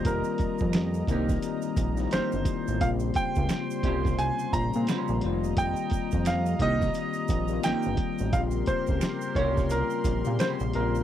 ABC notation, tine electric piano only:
X:1
M:4/4
L:1/16
Q:"Swing 16ths" 1/4=87
K:Bbdor
V:1 name="Tine electric piano"
[E,G,B,CF]4- [E,G,B,CF] z [E,G,B,CE]4 z [E,G,B,C=EF]4 z | [C,D,G,B,CF]4- [C,D,G,B,CF] z [C,G,B,CDF]4 z [D,G,B,CF]3 [E,G,B,CF]2- | [E,G,B,CF]4- [E,G,B,CF] z [E,G,B,CFG]4 z [E,G,B,CF]4 z | [D,G,B,CF]4- [D,G,B,CF] z [G,B,DF]4 z [C,D,G,B,CG]3 [D,G,B,CF]2 |]